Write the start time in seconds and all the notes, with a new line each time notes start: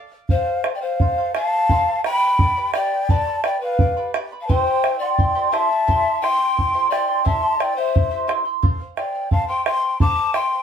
Already playing: A4 D5 F5
0.12 D5 F5
0.29 A4 C5 F5, bombo low
0.47 C5 F5
0.64 A4 C5 F5, bombo rim
0.75 D5 G5
0.81 C5 F5
1.00 A4 C5 F5, bombo low
1.18 A4 C5 F5
1.35 A4 C5 F5 A5, bombo rim
1.54 C5 F5
1.69 A4 C5 F5, bombo low
1.87 C5 F5
2.04 A4 C5 F5 G5 B5, bombo rim
2.22 C5 F5
2.39 B4 D5 G5 B5, bombo low
2.57 G4 B4 D5 G5 B5
2.74 G4 B4 D5 G5 B5, bombo rim
2.93 B4 D5 B5
3.09 G4 B4 D5 G5 A5 B5, bombo low
3.27 B4 D5 B5
3.43 B4 D5 G5 B5, bombo rim
3.60 B4 D5 F5 B5
3.79 B4 D5 G5 B5, bombo low
3.97 G4 B4 D5 G5 B5
4.14 G4 B4 D5 G5 B5, bombo rim
4.32 B4 D5 B5
4.41 F5 A5
4.47 E4 G4 C5 E5 G5 C6, bombo low
4.66 E4 E5 C6
4.84 E4 C5 E5 C6, bombo rim
4.99 E4 D5 E5 G5 C6
5.18 E4 C5 E5 C6, bombo low
5.35 E4 G4 C5 E5 C6
5.51 E4 G4 C5 E5 A5 C6, bombo rim
5.69 E4 E5 C6
5.87 E4 G4 C5 E5 C6, bombo low
6.04 E4 E5 C6
6.21 E4 C5 E5 G5 C6, bombo rim
6.39 E4 E5 C6
6.56 E4 C5 E5 C6, bombo low
6.74 E4 G4 C5 E5 C6
6.90 E4 G4 C5 D5 E5 G5 C6, bombo rim
7.08 E4 E5 C6, bombo rim
7.25 E4 G4 C5 E5 A5 C6, bombo rim, bombo low
7.43 E4 E5 C6
7.59 E4 C5 D5 E5 G5 C6, bombo rim
7.76 E4 C5 E5 C6
7.93 E4 C5 E5 C6, bombo rim, bombo low
8.11 E4 G4 C5 E5 C6
8.27 E4 G4 C5 E5 C6, bombo rim
8.45 E4 E5 C6
8.62 A4 C5 F5, bombo low
8.80 C5 F5
8.97 A4 C5 D5 F5 G5, bombo rim
9.15 C5 F5
9.31 A4 C5 F5 A5, bombo low
9.48 A4 C5 F5 G5 C6
9.66 A4 C5 F5 G5 C6, bombo rim
9.83 C5 F5
10.00 A4 C5 F5 A5 D6, bombo low
10.18 C5 F5
10.33 A4 C5 F5 G5 C6, bombo rim
10.53 C5 F5